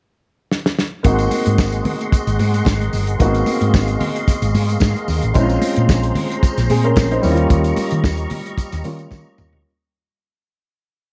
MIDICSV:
0, 0, Header, 1, 5, 480
1, 0, Start_track
1, 0, Tempo, 538117
1, 933, Time_signature, 4, 2, 24, 8
1, 9919, End_track
2, 0, Start_track
2, 0, Title_t, "Tonewheel organ"
2, 0, Program_c, 0, 16
2, 929, Note_on_c, 0, 68, 61
2, 931, Note_on_c, 0, 78, 59
2, 933, Note_on_c, 0, 75, 53
2, 936, Note_on_c, 0, 84, 65
2, 2834, Note_off_c, 0, 78, 0
2, 2852, Note_on_c, 0, 77, 65
2, 4737, Note_off_c, 0, 75, 0
2, 4752, Note_off_c, 0, 77, 0
2, 4766, Note_on_c, 0, 72, 55
2, 4767, Note_on_c, 0, 82, 58
2, 6412, Note_off_c, 0, 68, 0
2, 6415, Note_off_c, 0, 84, 0
2, 6430, Note_off_c, 0, 72, 0
2, 6431, Note_off_c, 0, 82, 0
2, 6454, Note_on_c, 0, 67, 64
2, 6454, Note_on_c, 0, 85, 79
2, 6455, Note_on_c, 0, 82, 63
2, 6456, Note_on_c, 0, 75, 63
2, 8589, Note_off_c, 0, 67, 0
2, 8589, Note_off_c, 0, 85, 0
2, 8590, Note_off_c, 0, 75, 0
2, 8590, Note_off_c, 0, 82, 0
2, 9919, End_track
3, 0, Start_track
3, 0, Title_t, "Grand piano"
3, 0, Program_c, 1, 0
3, 920, Note_on_c, 1, 58, 69
3, 927, Note_on_c, 1, 60, 56
3, 937, Note_on_c, 1, 63, 59
3, 946, Note_on_c, 1, 66, 67
3, 1127, Control_c, 1, 64, 127
3, 2812, Note_off_c, 1, 58, 0
3, 2816, Note_off_c, 1, 60, 0
3, 2821, Note_off_c, 1, 63, 0
3, 2825, Note_off_c, 1, 66, 0
3, 2842, Note_on_c, 1, 58, 59
3, 2853, Note_on_c, 1, 59, 45
3, 2861, Note_on_c, 1, 63, 59
3, 2870, Note_on_c, 1, 66, 71
3, 2912, Note_on_c, 1, 60, 56
3, 2915, Note_off_c, 1, 59, 0
3, 4731, Note_off_c, 1, 58, 0
3, 4740, Note_off_c, 1, 63, 0
3, 4744, Note_off_c, 1, 66, 0
3, 4756, Note_off_c, 1, 60, 0
3, 4761, Note_on_c, 1, 56, 64
3, 4769, Note_on_c, 1, 60, 61
3, 4778, Note_on_c, 1, 61, 59
3, 4784, Control_c, 1, 64, 0
3, 4786, Note_on_c, 1, 64, 55
3, 4840, Note_off_c, 1, 64, 0
3, 4843, Note_on_c, 1, 65, 68
3, 4924, Control_c, 1, 64, 127
3, 5945, Note_off_c, 1, 60, 0
3, 5950, Note_off_c, 1, 61, 0
3, 5977, Note_on_c, 1, 68, 56
3, 5983, Note_off_c, 1, 65, 0
3, 5983, Note_on_c, 1, 60, 47
3, 6095, Note_off_c, 1, 68, 0
3, 6098, Note_off_c, 1, 60, 0
3, 6103, Note_on_c, 1, 70, 66
3, 6109, Note_on_c, 1, 61, 60
3, 6328, Note_off_c, 1, 70, 0
3, 6331, Note_off_c, 1, 61, 0
3, 6346, Note_on_c, 1, 72, 69
3, 6349, Note_on_c, 1, 63, 58
3, 6410, Note_off_c, 1, 56, 0
3, 6437, Note_on_c, 1, 55, 70
3, 6446, Note_on_c, 1, 58, 68
3, 6456, Note_on_c, 1, 61, 57
3, 6460, Control_c, 1, 64, 0
3, 6464, Note_on_c, 1, 64, 65
3, 6518, Note_off_c, 1, 64, 0
3, 6522, Note_on_c, 1, 65, 79
3, 6570, Note_off_c, 1, 72, 0
3, 6571, Note_off_c, 1, 63, 0
3, 6640, Control_c, 1, 64, 127
3, 7853, Note_off_c, 1, 55, 0
3, 7858, Note_off_c, 1, 58, 0
3, 7863, Note_off_c, 1, 61, 0
3, 7882, Note_on_c, 1, 55, 51
3, 7883, Note_off_c, 1, 65, 0
3, 7888, Note_on_c, 1, 58, 46
3, 7890, Note_on_c, 1, 61, 47
3, 7896, Note_on_c, 1, 65, 57
3, 8605, Note_off_c, 1, 55, 0
3, 8608, Note_off_c, 1, 58, 0
3, 8609, Note_off_c, 1, 61, 0
3, 8613, Note_off_c, 1, 65, 0
3, 8622, Control_c, 1, 64, 0
3, 9919, End_track
4, 0, Start_track
4, 0, Title_t, "Fingered electric bass"
4, 0, Program_c, 2, 33
4, 935, Note_on_c, 2, 32, 98
4, 1126, Note_off_c, 2, 32, 0
4, 1308, Note_on_c, 2, 44, 72
4, 1395, Note_off_c, 2, 44, 0
4, 1417, Note_on_c, 2, 32, 78
4, 1607, Note_off_c, 2, 32, 0
4, 2025, Note_on_c, 2, 32, 90
4, 2114, Note_off_c, 2, 32, 0
4, 2137, Note_on_c, 2, 44, 86
4, 2327, Note_off_c, 2, 44, 0
4, 2380, Note_on_c, 2, 32, 92
4, 2569, Note_off_c, 2, 32, 0
4, 2618, Note_on_c, 2, 31, 73
4, 2808, Note_off_c, 2, 31, 0
4, 2861, Note_on_c, 2, 32, 103
4, 3049, Note_off_c, 2, 32, 0
4, 3223, Note_on_c, 2, 44, 78
4, 3312, Note_off_c, 2, 44, 0
4, 3337, Note_on_c, 2, 32, 87
4, 3527, Note_off_c, 2, 32, 0
4, 3942, Note_on_c, 2, 32, 89
4, 4056, Note_on_c, 2, 44, 87
4, 4069, Note_off_c, 2, 32, 0
4, 4246, Note_off_c, 2, 44, 0
4, 4298, Note_on_c, 2, 44, 88
4, 4397, Note_off_c, 2, 44, 0
4, 4537, Note_on_c, 2, 39, 82
4, 4636, Note_off_c, 2, 39, 0
4, 4667, Note_on_c, 2, 33, 88
4, 4754, Note_off_c, 2, 33, 0
4, 4779, Note_on_c, 2, 34, 91
4, 4967, Note_off_c, 2, 34, 0
4, 5149, Note_on_c, 2, 46, 87
4, 5235, Note_off_c, 2, 46, 0
4, 5259, Note_on_c, 2, 34, 90
4, 5447, Note_off_c, 2, 34, 0
4, 5866, Note_on_c, 2, 34, 98
4, 5952, Note_off_c, 2, 34, 0
4, 5979, Note_on_c, 2, 46, 94
4, 6218, Note_on_c, 2, 34, 80
4, 6232, Note_off_c, 2, 46, 0
4, 6406, Note_off_c, 2, 34, 0
4, 6461, Note_on_c, 2, 39, 78
4, 6648, Note_off_c, 2, 39, 0
4, 6695, Note_on_c, 2, 39, 96
4, 6884, Note_off_c, 2, 39, 0
4, 7065, Note_on_c, 2, 51, 79
4, 7151, Note_off_c, 2, 51, 0
4, 7173, Note_on_c, 2, 39, 77
4, 7362, Note_off_c, 2, 39, 0
4, 7785, Note_on_c, 2, 39, 80
4, 7871, Note_off_c, 2, 39, 0
4, 7899, Note_on_c, 2, 51, 87
4, 8086, Note_off_c, 2, 51, 0
4, 8133, Note_on_c, 2, 51, 86
4, 8232, Note_off_c, 2, 51, 0
4, 8384, Note_on_c, 2, 39, 88
4, 8479, Note_off_c, 2, 39, 0
4, 8508, Note_on_c, 2, 38, 93
4, 8593, Note_off_c, 2, 38, 0
4, 9919, End_track
5, 0, Start_track
5, 0, Title_t, "Drums"
5, 460, Note_on_c, 9, 38, 73
5, 549, Note_off_c, 9, 38, 0
5, 588, Note_on_c, 9, 38, 83
5, 677, Note_off_c, 9, 38, 0
5, 700, Note_on_c, 9, 38, 82
5, 790, Note_off_c, 9, 38, 0
5, 930, Note_on_c, 9, 62, 34
5, 931, Note_on_c, 9, 42, 58
5, 933, Note_on_c, 9, 54, 44
5, 934, Note_on_c, 9, 36, 114
5, 1019, Note_off_c, 9, 62, 0
5, 1020, Note_off_c, 9, 42, 0
5, 1023, Note_off_c, 9, 36, 0
5, 1023, Note_off_c, 9, 54, 0
5, 1058, Note_on_c, 9, 42, 40
5, 1069, Note_on_c, 9, 54, 33
5, 1147, Note_off_c, 9, 42, 0
5, 1158, Note_off_c, 9, 54, 0
5, 1169, Note_on_c, 9, 46, 63
5, 1170, Note_on_c, 9, 62, 34
5, 1170, Note_on_c, 9, 63, 70
5, 1172, Note_on_c, 9, 54, 55
5, 1259, Note_off_c, 9, 46, 0
5, 1259, Note_off_c, 9, 62, 0
5, 1259, Note_off_c, 9, 63, 0
5, 1261, Note_off_c, 9, 54, 0
5, 1299, Note_on_c, 9, 42, 51
5, 1388, Note_off_c, 9, 42, 0
5, 1411, Note_on_c, 9, 54, 92
5, 1413, Note_on_c, 9, 36, 123
5, 1419, Note_on_c, 9, 38, 105
5, 1420, Note_on_c, 9, 62, 29
5, 1501, Note_off_c, 9, 54, 0
5, 1503, Note_off_c, 9, 36, 0
5, 1508, Note_off_c, 9, 38, 0
5, 1509, Note_off_c, 9, 62, 0
5, 1535, Note_on_c, 9, 54, 29
5, 1539, Note_on_c, 9, 42, 46
5, 1624, Note_off_c, 9, 54, 0
5, 1628, Note_off_c, 9, 42, 0
5, 1652, Note_on_c, 9, 46, 62
5, 1652, Note_on_c, 9, 62, 30
5, 1652, Note_on_c, 9, 63, 75
5, 1652, Note_on_c, 9, 64, 71
5, 1741, Note_off_c, 9, 46, 0
5, 1741, Note_off_c, 9, 62, 0
5, 1741, Note_off_c, 9, 63, 0
5, 1741, Note_off_c, 9, 64, 0
5, 1791, Note_on_c, 9, 42, 46
5, 1881, Note_off_c, 9, 42, 0
5, 1895, Note_on_c, 9, 36, 117
5, 1896, Note_on_c, 9, 54, 55
5, 1905, Note_on_c, 9, 42, 66
5, 1984, Note_off_c, 9, 36, 0
5, 1985, Note_off_c, 9, 54, 0
5, 1994, Note_off_c, 9, 42, 0
5, 2026, Note_on_c, 9, 54, 48
5, 2027, Note_on_c, 9, 42, 47
5, 2116, Note_off_c, 9, 54, 0
5, 2117, Note_off_c, 9, 42, 0
5, 2135, Note_on_c, 9, 46, 72
5, 2135, Note_on_c, 9, 62, 35
5, 2135, Note_on_c, 9, 63, 77
5, 2142, Note_on_c, 9, 54, 51
5, 2224, Note_off_c, 9, 46, 0
5, 2224, Note_off_c, 9, 62, 0
5, 2224, Note_off_c, 9, 63, 0
5, 2231, Note_off_c, 9, 54, 0
5, 2264, Note_on_c, 9, 54, 33
5, 2267, Note_on_c, 9, 42, 47
5, 2353, Note_off_c, 9, 54, 0
5, 2356, Note_off_c, 9, 42, 0
5, 2363, Note_on_c, 9, 63, 78
5, 2375, Note_on_c, 9, 36, 114
5, 2375, Note_on_c, 9, 54, 79
5, 2378, Note_on_c, 9, 38, 105
5, 2453, Note_off_c, 9, 63, 0
5, 2464, Note_off_c, 9, 54, 0
5, 2465, Note_off_c, 9, 36, 0
5, 2467, Note_off_c, 9, 38, 0
5, 2507, Note_on_c, 9, 42, 37
5, 2597, Note_off_c, 9, 42, 0
5, 2612, Note_on_c, 9, 54, 53
5, 2615, Note_on_c, 9, 64, 69
5, 2626, Note_on_c, 9, 46, 59
5, 2702, Note_off_c, 9, 54, 0
5, 2705, Note_off_c, 9, 64, 0
5, 2715, Note_off_c, 9, 46, 0
5, 2741, Note_on_c, 9, 42, 46
5, 2830, Note_off_c, 9, 42, 0
5, 2851, Note_on_c, 9, 62, 33
5, 2855, Note_on_c, 9, 36, 113
5, 2857, Note_on_c, 9, 42, 62
5, 2857, Note_on_c, 9, 54, 46
5, 2940, Note_off_c, 9, 62, 0
5, 2945, Note_off_c, 9, 36, 0
5, 2946, Note_off_c, 9, 42, 0
5, 2946, Note_off_c, 9, 54, 0
5, 2983, Note_on_c, 9, 54, 33
5, 2984, Note_on_c, 9, 42, 40
5, 3072, Note_off_c, 9, 54, 0
5, 3073, Note_off_c, 9, 42, 0
5, 3089, Note_on_c, 9, 62, 36
5, 3089, Note_on_c, 9, 63, 84
5, 3095, Note_on_c, 9, 46, 66
5, 3095, Note_on_c, 9, 54, 52
5, 3178, Note_off_c, 9, 62, 0
5, 3178, Note_off_c, 9, 63, 0
5, 3184, Note_off_c, 9, 46, 0
5, 3185, Note_off_c, 9, 54, 0
5, 3224, Note_on_c, 9, 42, 54
5, 3313, Note_off_c, 9, 42, 0
5, 3335, Note_on_c, 9, 36, 121
5, 3335, Note_on_c, 9, 54, 89
5, 3338, Note_on_c, 9, 62, 28
5, 3342, Note_on_c, 9, 38, 102
5, 3424, Note_off_c, 9, 36, 0
5, 3424, Note_off_c, 9, 54, 0
5, 3428, Note_off_c, 9, 62, 0
5, 3431, Note_off_c, 9, 38, 0
5, 3459, Note_on_c, 9, 42, 45
5, 3460, Note_on_c, 9, 54, 29
5, 3548, Note_off_c, 9, 42, 0
5, 3549, Note_off_c, 9, 54, 0
5, 3572, Note_on_c, 9, 46, 71
5, 3575, Note_on_c, 9, 63, 72
5, 3575, Note_on_c, 9, 64, 67
5, 3661, Note_off_c, 9, 46, 0
5, 3665, Note_off_c, 9, 63, 0
5, 3665, Note_off_c, 9, 64, 0
5, 3710, Note_on_c, 9, 42, 44
5, 3799, Note_off_c, 9, 42, 0
5, 3814, Note_on_c, 9, 54, 60
5, 3815, Note_on_c, 9, 36, 105
5, 3825, Note_on_c, 9, 42, 71
5, 3825, Note_on_c, 9, 62, 34
5, 3903, Note_off_c, 9, 54, 0
5, 3904, Note_off_c, 9, 36, 0
5, 3914, Note_off_c, 9, 62, 0
5, 3915, Note_off_c, 9, 42, 0
5, 3942, Note_on_c, 9, 54, 49
5, 3945, Note_on_c, 9, 42, 45
5, 4031, Note_off_c, 9, 54, 0
5, 4034, Note_off_c, 9, 42, 0
5, 4055, Note_on_c, 9, 54, 49
5, 4056, Note_on_c, 9, 46, 74
5, 4056, Note_on_c, 9, 63, 71
5, 4144, Note_off_c, 9, 54, 0
5, 4145, Note_off_c, 9, 46, 0
5, 4145, Note_off_c, 9, 63, 0
5, 4178, Note_on_c, 9, 54, 34
5, 4188, Note_on_c, 9, 42, 44
5, 4267, Note_off_c, 9, 54, 0
5, 4278, Note_off_c, 9, 42, 0
5, 4284, Note_on_c, 9, 62, 35
5, 4284, Note_on_c, 9, 63, 75
5, 4287, Note_on_c, 9, 54, 90
5, 4296, Note_on_c, 9, 36, 112
5, 4301, Note_on_c, 9, 38, 110
5, 4373, Note_off_c, 9, 62, 0
5, 4373, Note_off_c, 9, 63, 0
5, 4377, Note_off_c, 9, 54, 0
5, 4385, Note_off_c, 9, 36, 0
5, 4390, Note_off_c, 9, 38, 0
5, 4428, Note_on_c, 9, 42, 36
5, 4517, Note_off_c, 9, 42, 0
5, 4531, Note_on_c, 9, 54, 59
5, 4533, Note_on_c, 9, 64, 64
5, 4549, Note_on_c, 9, 46, 60
5, 4620, Note_off_c, 9, 54, 0
5, 4622, Note_off_c, 9, 64, 0
5, 4638, Note_off_c, 9, 46, 0
5, 4661, Note_on_c, 9, 42, 41
5, 4750, Note_off_c, 9, 42, 0
5, 4767, Note_on_c, 9, 62, 33
5, 4771, Note_on_c, 9, 54, 47
5, 4775, Note_on_c, 9, 36, 116
5, 4778, Note_on_c, 9, 42, 62
5, 4856, Note_off_c, 9, 62, 0
5, 4860, Note_off_c, 9, 54, 0
5, 4865, Note_off_c, 9, 36, 0
5, 4867, Note_off_c, 9, 42, 0
5, 4902, Note_on_c, 9, 42, 39
5, 4907, Note_on_c, 9, 54, 32
5, 4991, Note_off_c, 9, 42, 0
5, 4996, Note_off_c, 9, 54, 0
5, 5010, Note_on_c, 9, 63, 82
5, 5013, Note_on_c, 9, 54, 52
5, 5014, Note_on_c, 9, 46, 65
5, 5099, Note_off_c, 9, 63, 0
5, 5102, Note_off_c, 9, 54, 0
5, 5103, Note_off_c, 9, 46, 0
5, 5139, Note_on_c, 9, 42, 56
5, 5229, Note_off_c, 9, 42, 0
5, 5252, Note_on_c, 9, 54, 90
5, 5254, Note_on_c, 9, 36, 121
5, 5261, Note_on_c, 9, 38, 97
5, 5342, Note_off_c, 9, 54, 0
5, 5343, Note_off_c, 9, 36, 0
5, 5350, Note_off_c, 9, 38, 0
5, 5381, Note_on_c, 9, 42, 43
5, 5471, Note_off_c, 9, 42, 0
5, 5489, Note_on_c, 9, 62, 31
5, 5489, Note_on_c, 9, 63, 66
5, 5489, Note_on_c, 9, 64, 67
5, 5494, Note_on_c, 9, 46, 70
5, 5578, Note_off_c, 9, 62, 0
5, 5578, Note_off_c, 9, 63, 0
5, 5578, Note_off_c, 9, 64, 0
5, 5583, Note_off_c, 9, 46, 0
5, 5633, Note_on_c, 9, 42, 48
5, 5722, Note_off_c, 9, 42, 0
5, 5734, Note_on_c, 9, 36, 109
5, 5736, Note_on_c, 9, 54, 61
5, 5744, Note_on_c, 9, 42, 61
5, 5746, Note_on_c, 9, 62, 37
5, 5823, Note_off_c, 9, 36, 0
5, 5825, Note_off_c, 9, 54, 0
5, 5833, Note_off_c, 9, 42, 0
5, 5836, Note_off_c, 9, 62, 0
5, 5865, Note_on_c, 9, 54, 51
5, 5867, Note_on_c, 9, 38, 33
5, 5867, Note_on_c, 9, 42, 43
5, 5954, Note_off_c, 9, 54, 0
5, 5956, Note_off_c, 9, 42, 0
5, 5957, Note_off_c, 9, 38, 0
5, 5974, Note_on_c, 9, 46, 74
5, 5975, Note_on_c, 9, 63, 73
5, 5977, Note_on_c, 9, 54, 45
5, 6063, Note_off_c, 9, 46, 0
5, 6064, Note_off_c, 9, 63, 0
5, 6066, Note_off_c, 9, 54, 0
5, 6105, Note_on_c, 9, 42, 45
5, 6194, Note_off_c, 9, 42, 0
5, 6207, Note_on_c, 9, 63, 78
5, 6214, Note_on_c, 9, 36, 123
5, 6215, Note_on_c, 9, 54, 89
5, 6218, Note_on_c, 9, 38, 108
5, 6296, Note_off_c, 9, 63, 0
5, 6303, Note_off_c, 9, 36, 0
5, 6304, Note_off_c, 9, 54, 0
5, 6307, Note_off_c, 9, 38, 0
5, 6344, Note_on_c, 9, 42, 37
5, 6433, Note_off_c, 9, 42, 0
5, 6449, Note_on_c, 9, 54, 58
5, 6458, Note_on_c, 9, 64, 70
5, 6463, Note_on_c, 9, 46, 55
5, 6538, Note_off_c, 9, 54, 0
5, 6547, Note_off_c, 9, 64, 0
5, 6552, Note_off_c, 9, 46, 0
5, 6577, Note_on_c, 9, 42, 45
5, 6666, Note_off_c, 9, 42, 0
5, 6691, Note_on_c, 9, 42, 58
5, 6692, Note_on_c, 9, 36, 116
5, 6694, Note_on_c, 9, 62, 36
5, 6696, Note_on_c, 9, 54, 46
5, 6780, Note_off_c, 9, 42, 0
5, 6781, Note_off_c, 9, 36, 0
5, 6783, Note_off_c, 9, 62, 0
5, 6785, Note_off_c, 9, 54, 0
5, 6818, Note_on_c, 9, 42, 43
5, 6829, Note_on_c, 9, 54, 30
5, 6907, Note_off_c, 9, 42, 0
5, 6918, Note_off_c, 9, 54, 0
5, 6926, Note_on_c, 9, 46, 67
5, 6933, Note_on_c, 9, 62, 34
5, 6933, Note_on_c, 9, 63, 81
5, 6939, Note_on_c, 9, 54, 55
5, 7015, Note_off_c, 9, 46, 0
5, 7022, Note_off_c, 9, 62, 0
5, 7022, Note_off_c, 9, 63, 0
5, 7028, Note_off_c, 9, 54, 0
5, 7053, Note_on_c, 9, 42, 59
5, 7142, Note_off_c, 9, 42, 0
5, 7170, Note_on_c, 9, 36, 121
5, 7173, Note_on_c, 9, 38, 107
5, 7179, Note_on_c, 9, 62, 29
5, 7180, Note_on_c, 9, 54, 80
5, 7259, Note_off_c, 9, 36, 0
5, 7262, Note_off_c, 9, 38, 0
5, 7269, Note_off_c, 9, 54, 0
5, 7269, Note_off_c, 9, 62, 0
5, 7289, Note_on_c, 9, 42, 45
5, 7296, Note_on_c, 9, 54, 29
5, 7378, Note_off_c, 9, 42, 0
5, 7386, Note_off_c, 9, 54, 0
5, 7402, Note_on_c, 9, 46, 63
5, 7414, Note_on_c, 9, 62, 29
5, 7414, Note_on_c, 9, 63, 67
5, 7414, Note_on_c, 9, 64, 70
5, 7491, Note_off_c, 9, 46, 0
5, 7503, Note_off_c, 9, 62, 0
5, 7503, Note_off_c, 9, 63, 0
5, 7503, Note_off_c, 9, 64, 0
5, 7545, Note_on_c, 9, 42, 48
5, 7635, Note_off_c, 9, 42, 0
5, 7649, Note_on_c, 9, 36, 102
5, 7657, Note_on_c, 9, 42, 69
5, 7658, Note_on_c, 9, 54, 59
5, 7739, Note_off_c, 9, 36, 0
5, 7746, Note_off_c, 9, 42, 0
5, 7747, Note_off_c, 9, 54, 0
5, 7781, Note_on_c, 9, 42, 45
5, 7781, Note_on_c, 9, 54, 45
5, 7782, Note_on_c, 9, 38, 33
5, 7870, Note_off_c, 9, 42, 0
5, 7871, Note_off_c, 9, 38, 0
5, 7871, Note_off_c, 9, 54, 0
5, 7886, Note_on_c, 9, 46, 66
5, 7894, Note_on_c, 9, 54, 47
5, 7894, Note_on_c, 9, 63, 76
5, 7975, Note_off_c, 9, 46, 0
5, 7983, Note_off_c, 9, 54, 0
5, 7983, Note_off_c, 9, 63, 0
5, 8017, Note_on_c, 9, 42, 43
5, 8019, Note_on_c, 9, 54, 28
5, 8106, Note_off_c, 9, 42, 0
5, 8108, Note_off_c, 9, 54, 0
5, 8123, Note_on_c, 9, 62, 36
5, 8123, Note_on_c, 9, 63, 76
5, 8130, Note_on_c, 9, 36, 115
5, 8131, Note_on_c, 9, 54, 85
5, 8135, Note_on_c, 9, 38, 54
5, 8212, Note_off_c, 9, 62, 0
5, 8212, Note_off_c, 9, 63, 0
5, 8219, Note_off_c, 9, 36, 0
5, 8220, Note_off_c, 9, 54, 0
5, 8225, Note_off_c, 9, 38, 0
5, 8367, Note_on_c, 9, 54, 63
5, 8369, Note_on_c, 9, 45, 81
5, 8378, Note_on_c, 9, 64, 61
5, 8456, Note_off_c, 9, 54, 0
5, 8458, Note_off_c, 9, 45, 0
5, 8467, Note_off_c, 9, 64, 0
5, 8499, Note_on_c, 9, 43, 73
5, 8588, Note_off_c, 9, 43, 0
5, 9919, End_track
0, 0, End_of_file